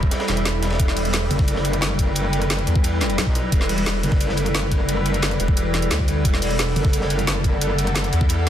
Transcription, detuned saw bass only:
0.28 0.78 E1 loud
0.80 1.29 E1 loud
2.67 3.17 E2 medium
3.52 4.02 E1 loud
5.40 5.90 E1 medium
5.91 6.24 D2 medium
6.25 6.75 E1 loud
8.13 8.49 E2 medium

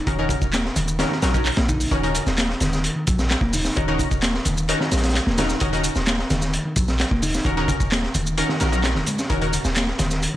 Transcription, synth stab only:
0.07 0.14 C#4 medium
0.07 0.14 D#4 medium
0.07 0.14 F#4 medium
0.07 0.14 A#4 medium
0.19 0.97 C#4 loud
0.19 0.97 D#4 medium
0.19 0.97 F#4 medium
0.19 0.97 A#4 loud
0.99 1.11 C#4 loud
0.99 1.11 D#4 medium
0.99 1.11 F#4 medium
0.99 1.11 A#4 loud
1.22 1.30 C#4 medium
1.22 1.30 D#4 medium
1.22 1.30 F#4 medium
1.22 1.30 A#4 medium
1.34 1.45 C#4 medium
1.34 1.45 D#4 medium
1.34 1.45 F#4 medium
1.34 1.45 A#4 medium
1.91 1.99 C#4 loud
1.91 1.99 D#4 medium
1.91 1.99 F#4 medium
1.91 1.99 A#4 loud
2.03 2.15 C#4 medium
2.03 2.15 D#4 medium
2.03 2.15 F#4 medium
2.03 2.15 A#4 loud
3.76 3.84 C#4 medium
3.76 3.84 D#4 medium
3.76 3.84 F#4 medium
3.76 3.84 A#4 medium
3.88 4.66 C#4 loud
3.88 4.66 D#4 medium
3.88 4.66 F#4 medium
3.88 4.66 A#4 loud
4.69 4.80 C#4 medium
4.69 4.80 D#4 medium
4.69 4.80 F#4 medium
4.69 4.80 A#4 loud
5.38 5.50 C#4 medium
5.38 5.50 D#4 medium
5.38 5.50 F#4 medium
5.38 5.50 A#4 medium
5.61 5.68 C#4 medium
5.61 5.68 D#4 medium
5.61 5.68 F#4 medium
5.61 5.68 A#4 loud
5.73 5.84 C#4 loud
5.73 5.84 D#4 medium
5.73 5.84 F#4 medium
5.73 5.84 A#4 loud
7.45 7.53 C#4 medium
7.45 7.53 D#4 medium
7.45 7.53 F#4 medium
7.45 7.53 A#4 medium
7.57 8.35 C#4 loud
7.57 8.35 D#4 medium
7.57 8.35 F#4 medium
7.57 8.35 A#4 loud
8.38 8.49 C#4 loud
8.38 8.49 D#4 medium
8.38 8.49 F#4 medium
8.38 8.49 A#4 loud
8.61 8.68 C#4 medium
8.61 8.68 D#4 medium
8.61 8.68 F#4 medium
8.61 8.68 A#4 medium
8.72 8.84 C#4 medium
8.72 8.84 D#4 medium
8.72 8.84 F#4 medium
8.72 8.84 A#4 medium
9.30 9.37 C#4 medium
9.30 9.37 D#4 medium
9.30 9.37 F#4 medium
9.30 9.37 A#4 loud
9.42 9.53 C#4 medium
9.42 9.53 D#4 medium
9.42 9.53 F#4 medium
9.42 9.53 A#4 loud

